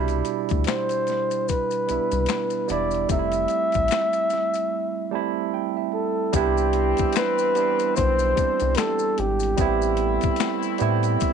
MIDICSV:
0, 0, Header, 1, 6, 480
1, 0, Start_track
1, 0, Key_signature, 0, "major"
1, 0, Tempo, 810811
1, 1833, Time_signature, 4, 2, 24, 8
1, 6707, End_track
2, 0, Start_track
2, 0, Title_t, "Flugelhorn"
2, 0, Program_c, 0, 56
2, 402, Note_on_c, 0, 72, 98
2, 882, Note_on_c, 0, 71, 78
2, 891, Note_off_c, 0, 72, 0
2, 1598, Note_off_c, 0, 71, 0
2, 1605, Note_on_c, 0, 74, 85
2, 1823, Note_off_c, 0, 74, 0
2, 1846, Note_on_c, 0, 76, 105
2, 3256, Note_off_c, 0, 76, 0
2, 3517, Note_on_c, 0, 69, 74
2, 3764, Note_on_c, 0, 67, 89
2, 3773, Note_off_c, 0, 69, 0
2, 4238, Note_off_c, 0, 67, 0
2, 4246, Note_on_c, 0, 71, 109
2, 4696, Note_off_c, 0, 71, 0
2, 4719, Note_on_c, 0, 72, 103
2, 5193, Note_on_c, 0, 69, 90
2, 5202, Note_off_c, 0, 72, 0
2, 5443, Note_on_c, 0, 67, 76
2, 5452, Note_off_c, 0, 69, 0
2, 6398, Note_off_c, 0, 67, 0
2, 6707, End_track
3, 0, Start_track
3, 0, Title_t, "Tine electric piano"
3, 0, Program_c, 1, 4
3, 0, Note_on_c, 1, 47, 84
3, 0, Note_on_c, 1, 55, 105
3, 0, Note_on_c, 1, 62, 95
3, 0, Note_on_c, 1, 64, 104
3, 16, Control_c, 1, 64, 127
3, 732, Note_off_c, 1, 55, 0
3, 735, Note_off_c, 1, 47, 0
3, 739, Note_off_c, 1, 62, 0
3, 744, Note_off_c, 1, 64, 0
3, 1107, Note_on_c, 1, 55, 57
3, 1116, Note_on_c, 1, 59, 55
3, 1124, Note_on_c, 1, 62, 51
3, 1131, Note_on_c, 1, 64, 68
3, 1527, Note_off_c, 1, 55, 0
3, 1531, Note_off_c, 1, 59, 0
3, 1535, Note_off_c, 1, 62, 0
3, 1539, Note_off_c, 1, 64, 0
3, 1584, Note_on_c, 1, 55, 77
3, 1592, Note_on_c, 1, 59, 65
3, 1600, Note_on_c, 1, 62, 66
3, 1607, Note_on_c, 1, 64, 82
3, 1797, Note_off_c, 1, 55, 0
3, 1801, Note_off_c, 1, 59, 0
3, 1805, Note_off_c, 1, 62, 0
3, 1809, Note_off_c, 1, 64, 0
3, 1826, Note_on_c, 1, 55, 78
3, 1833, Note_on_c, 1, 57, 81
3, 1840, Note_on_c, 1, 60, 80
3, 1841, Control_c, 1, 64, 0
3, 1850, Note_on_c, 1, 63, 78
3, 1886, Note_off_c, 1, 63, 0
3, 1887, Note_on_c, 1, 64, 96
3, 1956, Control_c, 1, 64, 127
3, 2653, Note_off_c, 1, 55, 0
3, 2656, Note_off_c, 1, 57, 0
3, 2660, Note_off_c, 1, 60, 0
3, 2684, Note_off_c, 1, 64, 0
3, 3024, Note_on_c, 1, 55, 85
3, 3031, Note_on_c, 1, 57, 67
3, 3035, Note_on_c, 1, 81, 60
3, 3042, Note_on_c, 1, 60, 75
3, 3048, Note_on_c, 1, 64, 97
3, 3257, Note_off_c, 1, 81, 0
3, 3279, Note_on_c, 1, 79, 72
3, 3406, Note_off_c, 1, 79, 0
3, 3415, Note_on_c, 1, 76, 60
3, 3654, Note_off_c, 1, 55, 0
3, 3657, Note_off_c, 1, 57, 0
3, 3663, Note_off_c, 1, 60, 0
3, 3666, Note_off_c, 1, 64, 0
3, 3730, Note_off_c, 1, 76, 0
3, 3744, Note_on_c, 1, 55, 99
3, 3751, Note_on_c, 1, 59, 84
3, 3758, Note_on_c, 1, 62, 93
3, 3761, Control_c, 1, 64, 0
3, 3767, Note_on_c, 1, 64, 103
3, 3867, Control_c, 1, 64, 127
3, 4374, Note_off_c, 1, 55, 0
3, 4378, Note_off_c, 1, 59, 0
3, 4381, Note_off_c, 1, 62, 0
3, 4385, Note_off_c, 1, 64, 0
3, 4468, Note_on_c, 1, 55, 65
3, 4473, Note_on_c, 1, 59, 65
3, 4480, Note_on_c, 1, 62, 66
3, 4488, Note_on_c, 1, 64, 67
3, 4887, Note_off_c, 1, 55, 0
3, 4890, Note_off_c, 1, 59, 0
3, 4893, Note_off_c, 1, 62, 0
3, 4898, Note_off_c, 1, 64, 0
3, 4946, Note_on_c, 1, 55, 71
3, 4953, Note_on_c, 1, 60, 54
3, 4961, Note_on_c, 1, 62, 61
3, 4968, Note_on_c, 1, 67, 67
3, 5575, Note_off_c, 1, 55, 0
3, 5579, Note_off_c, 1, 60, 0
3, 5582, Note_off_c, 1, 62, 0
3, 5586, Note_off_c, 1, 67, 0
3, 5665, Note_on_c, 1, 55, 86
3, 5674, Note_on_c, 1, 59, 83
3, 5680, Note_on_c, 1, 60, 80
3, 5681, Control_c, 1, 64, 0
3, 5689, Note_on_c, 1, 64, 113
3, 5785, Control_c, 1, 64, 127
3, 6294, Note_off_c, 1, 55, 0
3, 6299, Note_off_c, 1, 59, 0
3, 6302, Note_off_c, 1, 60, 0
3, 6306, Note_off_c, 1, 64, 0
3, 6385, Note_on_c, 1, 55, 81
3, 6391, Note_on_c, 1, 59, 70
3, 6400, Note_on_c, 1, 60, 77
3, 6407, Note_on_c, 1, 64, 95
3, 6707, Note_off_c, 1, 55, 0
3, 6707, Note_off_c, 1, 59, 0
3, 6707, Note_off_c, 1, 60, 0
3, 6707, Note_off_c, 1, 64, 0
3, 6707, End_track
4, 0, Start_track
4, 0, Title_t, "Horn section"
4, 0, Program_c, 2, 61
4, 3752, Note_on_c, 2, 52, 68
4, 3753, Note_on_c, 2, 55, 65
4, 3753, Note_on_c, 2, 60, 75
4, 5409, Note_off_c, 2, 52, 0
4, 5409, Note_off_c, 2, 55, 0
4, 5409, Note_off_c, 2, 60, 0
4, 5671, Note_on_c, 2, 60, 66
4, 5671, Note_on_c, 2, 64, 75
4, 5672, Note_on_c, 2, 57, 69
4, 6707, Note_off_c, 2, 57, 0
4, 6707, Note_off_c, 2, 60, 0
4, 6707, Note_off_c, 2, 64, 0
4, 6707, End_track
5, 0, Start_track
5, 0, Title_t, "Analog synth bass"
5, 0, Program_c, 3, 38
5, 0, Note_on_c, 3, 36, 91
5, 134, Note_off_c, 3, 36, 0
5, 309, Note_on_c, 3, 38, 96
5, 392, Note_off_c, 3, 38, 0
5, 1125, Note_on_c, 3, 36, 41
5, 1178, Note_off_c, 3, 36, 0
5, 1258, Note_on_c, 3, 36, 87
5, 1346, Note_off_c, 3, 36, 0
5, 1599, Note_on_c, 3, 28, 93
5, 1813, Note_off_c, 3, 28, 0
5, 1839, Note_on_c, 3, 29, 86
5, 2053, Note_off_c, 3, 29, 0
5, 2227, Note_on_c, 3, 33, 87
5, 2311, Note_off_c, 3, 33, 0
5, 3755, Note_on_c, 3, 36, 100
5, 4110, Note_off_c, 3, 36, 0
5, 4147, Note_on_c, 3, 35, 55
5, 4183, Note_off_c, 3, 35, 0
5, 4729, Note_on_c, 3, 35, 92
5, 4938, Note_off_c, 3, 35, 0
5, 5101, Note_on_c, 3, 36, 98
5, 5188, Note_off_c, 3, 36, 0
5, 5440, Note_on_c, 3, 32, 110
5, 5654, Note_off_c, 3, 32, 0
5, 5676, Note_on_c, 3, 33, 106
5, 6031, Note_off_c, 3, 33, 0
5, 6066, Note_on_c, 3, 45, 53
5, 6103, Note_off_c, 3, 45, 0
5, 6401, Note_on_c, 3, 45, 81
5, 6614, Note_off_c, 3, 45, 0
5, 6707, End_track
6, 0, Start_track
6, 0, Title_t, "Drums"
6, 48, Note_on_c, 9, 42, 46
6, 55, Note_on_c, 9, 82, 43
6, 107, Note_off_c, 9, 42, 0
6, 114, Note_off_c, 9, 82, 0
6, 146, Note_on_c, 9, 42, 54
6, 149, Note_on_c, 9, 82, 45
6, 205, Note_off_c, 9, 42, 0
6, 208, Note_off_c, 9, 82, 0
6, 289, Note_on_c, 9, 42, 50
6, 296, Note_on_c, 9, 82, 36
6, 304, Note_on_c, 9, 36, 99
6, 349, Note_off_c, 9, 42, 0
6, 355, Note_off_c, 9, 82, 0
6, 363, Note_off_c, 9, 36, 0
6, 381, Note_on_c, 9, 42, 77
6, 399, Note_on_c, 9, 26, 58
6, 399, Note_on_c, 9, 82, 59
6, 405, Note_off_c, 9, 26, 0
6, 405, Note_on_c, 9, 26, 85
6, 405, Note_on_c, 9, 38, 115
6, 440, Note_off_c, 9, 42, 0
6, 458, Note_off_c, 9, 82, 0
6, 464, Note_off_c, 9, 26, 0
6, 464, Note_off_c, 9, 38, 0
6, 528, Note_on_c, 9, 42, 52
6, 536, Note_on_c, 9, 82, 45
6, 587, Note_off_c, 9, 42, 0
6, 595, Note_off_c, 9, 82, 0
6, 632, Note_on_c, 9, 42, 44
6, 637, Note_on_c, 9, 82, 39
6, 651, Note_on_c, 9, 38, 31
6, 692, Note_off_c, 9, 42, 0
6, 696, Note_off_c, 9, 82, 0
6, 711, Note_off_c, 9, 38, 0
6, 775, Note_on_c, 9, 82, 44
6, 777, Note_on_c, 9, 42, 45
6, 834, Note_off_c, 9, 82, 0
6, 836, Note_off_c, 9, 42, 0
6, 879, Note_on_c, 9, 82, 54
6, 884, Note_on_c, 9, 42, 82
6, 886, Note_on_c, 9, 36, 78
6, 938, Note_off_c, 9, 82, 0
6, 943, Note_off_c, 9, 42, 0
6, 945, Note_off_c, 9, 36, 0
6, 1010, Note_on_c, 9, 82, 47
6, 1019, Note_on_c, 9, 42, 39
6, 1070, Note_off_c, 9, 82, 0
6, 1078, Note_off_c, 9, 42, 0
6, 1117, Note_on_c, 9, 42, 69
6, 1119, Note_on_c, 9, 82, 38
6, 1176, Note_off_c, 9, 42, 0
6, 1178, Note_off_c, 9, 82, 0
6, 1252, Note_on_c, 9, 42, 46
6, 1252, Note_on_c, 9, 82, 42
6, 1311, Note_off_c, 9, 82, 0
6, 1312, Note_off_c, 9, 42, 0
6, 1339, Note_on_c, 9, 42, 78
6, 1354, Note_on_c, 9, 26, 56
6, 1354, Note_on_c, 9, 82, 58
6, 1359, Note_on_c, 9, 38, 89
6, 1360, Note_off_c, 9, 26, 0
6, 1360, Note_on_c, 9, 26, 79
6, 1398, Note_off_c, 9, 42, 0
6, 1413, Note_off_c, 9, 82, 0
6, 1418, Note_off_c, 9, 38, 0
6, 1419, Note_off_c, 9, 26, 0
6, 1482, Note_on_c, 9, 42, 40
6, 1482, Note_on_c, 9, 82, 46
6, 1541, Note_off_c, 9, 42, 0
6, 1541, Note_off_c, 9, 82, 0
6, 1591, Note_on_c, 9, 82, 42
6, 1598, Note_on_c, 9, 42, 78
6, 1650, Note_off_c, 9, 82, 0
6, 1657, Note_off_c, 9, 42, 0
6, 1722, Note_on_c, 9, 82, 40
6, 1743, Note_on_c, 9, 42, 37
6, 1781, Note_off_c, 9, 82, 0
6, 1802, Note_off_c, 9, 42, 0
6, 1830, Note_on_c, 9, 42, 91
6, 1831, Note_on_c, 9, 82, 61
6, 1833, Note_on_c, 9, 36, 123
6, 1889, Note_off_c, 9, 42, 0
6, 1890, Note_off_c, 9, 82, 0
6, 1892, Note_off_c, 9, 36, 0
6, 1963, Note_on_c, 9, 42, 51
6, 1971, Note_on_c, 9, 82, 44
6, 2022, Note_off_c, 9, 42, 0
6, 2030, Note_off_c, 9, 82, 0
6, 2061, Note_on_c, 9, 42, 62
6, 2069, Note_on_c, 9, 82, 40
6, 2121, Note_off_c, 9, 42, 0
6, 2128, Note_off_c, 9, 82, 0
6, 2203, Note_on_c, 9, 42, 45
6, 2213, Note_on_c, 9, 82, 38
6, 2221, Note_on_c, 9, 36, 93
6, 2263, Note_off_c, 9, 42, 0
6, 2273, Note_off_c, 9, 82, 0
6, 2280, Note_off_c, 9, 36, 0
6, 2298, Note_on_c, 9, 42, 78
6, 2315, Note_on_c, 9, 26, 56
6, 2315, Note_on_c, 9, 82, 67
6, 2322, Note_on_c, 9, 38, 110
6, 2323, Note_off_c, 9, 26, 0
6, 2323, Note_on_c, 9, 26, 91
6, 2357, Note_off_c, 9, 42, 0
6, 2374, Note_off_c, 9, 82, 0
6, 2381, Note_off_c, 9, 38, 0
6, 2382, Note_off_c, 9, 26, 0
6, 2446, Note_on_c, 9, 42, 53
6, 2446, Note_on_c, 9, 82, 41
6, 2505, Note_off_c, 9, 42, 0
6, 2505, Note_off_c, 9, 82, 0
6, 2545, Note_on_c, 9, 82, 37
6, 2548, Note_on_c, 9, 42, 51
6, 2566, Note_on_c, 9, 38, 32
6, 2604, Note_off_c, 9, 82, 0
6, 2607, Note_off_c, 9, 42, 0
6, 2626, Note_off_c, 9, 38, 0
6, 2686, Note_on_c, 9, 82, 46
6, 2696, Note_on_c, 9, 42, 48
6, 2745, Note_off_c, 9, 82, 0
6, 2755, Note_off_c, 9, 42, 0
6, 3748, Note_on_c, 9, 42, 86
6, 3750, Note_on_c, 9, 82, 70
6, 3751, Note_on_c, 9, 36, 127
6, 3807, Note_off_c, 9, 42, 0
6, 3809, Note_off_c, 9, 82, 0
6, 3811, Note_off_c, 9, 36, 0
6, 3891, Note_on_c, 9, 82, 43
6, 3950, Note_off_c, 9, 82, 0
6, 3984, Note_on_c, 9, 42, 65
6, 4043, Note_off_c, 9, 42, 0
6, 4126, Note_on_c, 9, 42, 50
6, 4132, Note_on_c, 9, 82, 44
6, 4141, Note_on_c, 9, 36, 98
6, 4185, Note_off_c, 9, 42, 0
6, 4191, Note_off_c, 9, 82, 0
6, 4200, Note_off_c, 9, 36, 0
6, 4218, Note_on_c, 9, 42, 90
6, 4237, Note_on_c, 9, 26, 63
6, 4237, Note_on_c, 9, 82, 62
6, 4242, Note_on_c, 9, 38, 116
6, 4243, Note_off_c, 9, 26, 0
6, 4243, Note_on_c, 9, 26, 97
6, 4277, Note_off_c, 9, 42, 0
6, 4297, Note_off_c, 9, 82, 0
6, 4301, Note_off_c, 9, 38, 0
6, 4302, Note_off_c, 9, 26, 0
6, 4372, Note_on_c, 9, 82, 48
6, 4431, Note_off_c, 9, 82, 0
6, 4470, Note_on_c, 9, 42, 53
6, 4477, Note_on_c, 9, 82, 46
6, 4530, Note_off_c, 9, 42, 0
6, 4536, Note_off_c, 9, 82, 0
6, 4613, Note_on_c, 9, 82, 48
6, 4617, Note_on_c, 9, 42, 53
6, 4673, Note_off_c, 9, 82, 0
6, 4676, Note_off_c, 9, 42, 0
6, 4713, Note_on_c, 9, 82, 68
6, 4724, Note_on_c, 9, 36, 94
6, 4725, Note_on_c, 9, 42, 86
6, 4773, Note_off_c, 9, 82, 0
6, 4783, Note_off_c, 9, 36, 0
6, 4784, Note_off_c, 9, 42, 0
6, 4848, Note_on_c, 9, 82, 51
6, 4857, Note_on_c, 9, 42, 32
6, 4907, Note_off_c, 9, 82, 0
6, 4916, Note_off_c, 9, 42, 0
6, 4956, Note_on_c, 9, 42, 72
6, 4957, Note_on_c, 9, 82, 43
6, 4959, Note_on_c, 9, 36, 98
6, 5015, Note_off_c, 9, 42, 0
6, 5016, Note_off_c, 9, 82, 0
6, 5018, Note_off_c, 9, 36, 0
6, 5089, Note_on_c, 9, 42, 48
6, 5091, Note_on_c, 9, 82, 42
6, 5148, Note_off_c, 9, 42, 0
6, 5150, Note_off_c, 9, 82, 0
6, 5178, Note_on_c, 9, 42, 81
6, 5195, Note_on_c, 9, 26, 53
6, 5195, Note_on_c, 9, 82, 55
6, 5199, Note_off_c, 9, 26, 0
6, 5199, Note_on_c, 9, 26, 81
6, 5199, Note_on_c, 9, 38, 103
6, 5237, Note_off_c, 9, 42, 0
6, 5254, Note_off_c, 9, 82, 0
6, 5258, Note_off_c, 9, 38, 0
6, 5259, Note_off_c, 9, 26, 0
6, 5321, Note_on_c, 9, 82, 48
6, 5380, Note_off_c, 9, 82, 0
6, 5433, Note_on_c, 9, 42, 81
6, 5492, Note_off_c, 9, 42, 0
6, 5563, Note_on_c, 9, 82, 49
6, 5583, Note_on_c, 9, 42, 45
6, 5622, Note_off_c, 9, 82, 0
6, 5642, Note_off_c, 9, 42, 0
6, 5669, Note_on_c, 9, 42, 98
6, 5670, Note_on_c, 9, 82, 68
6, 5672, Note_on_c, 9, 36, 127
6, 5728, Note_off_c, 9, 42, 0
6, 5729, Note_off_c, 9, 82, 0
6, 5731, Note_off_c, 9, 36, 0
6, 5812, Note_on_c, 9, 82, 46
6, 5871, Note_off_c, 9, 82, 0
6, 5901, Note_on_c, 9, 42, 67
6, 5961, Note_off_c, 9, 42, 0
6, 6044, Note_on_c, 9, 42, 53
6, 6052, Note_on_c, 9, 82, 41
6, 6061, Note_on_c, 9, 36, 113
6, 6104, Note_off_c, 9, 42, 0
6, 6111, Note_off_c, 9, 82, 0
6, 6120, Note_off_c, 9, 36, 0
6, 6135, Note_on_c, 9, 42, 85
6, 6157, Note_on_c, 9, 26, 63
6, 6157, Note_on_c, 9, 82, 63
6, 6159, Note_off_c, 9, 26, 0
6, 6159, Note_on_c, 9, 26, 91
6, 6159, Note_on_c, 9, 38, 127
6, 6194, Note_off_c, 9, 42, 0
6, 6217, Note_off_c, 9, 82, 0
6, 6218, Note_off_c, 9, 38, 0
6, 6219, Note_off_c, 9, 26, 0
6, 6291, Note_on_c, 9, 82, 49
6, 6350, Note_off_c, 9, 82, 0
6, 6383, Note_on_c, 9, 42, 59
6, 6394, Note_on_c, 9, 82, 49
6, 6442, Note_off_c, 9, 42, 0
6, 6453, Note_off_c, 9, 82, 0
6, 6530, Note_on_c, 9, 42, 52
6, 6534, Note_on_c, 9, 82, 44
6, 6589, Note_off_c, 9, 42, 0
6, 6593, Note_off_c, 9, 82, 0
6, 6632, Note_on_c, 9, 82, 63
6, 6635, Note_on_c, 9, 42, 81
6, 6642, Note_on_c, 9, 36, 96
6, 6692, Note_off_c, 9, 82, 0
6, 6694, Note_off_c, 9, 42, 0
6, 6701, Note_off_c, 9, 36, 0
6, 6707, End_track
0, 0, End_of_file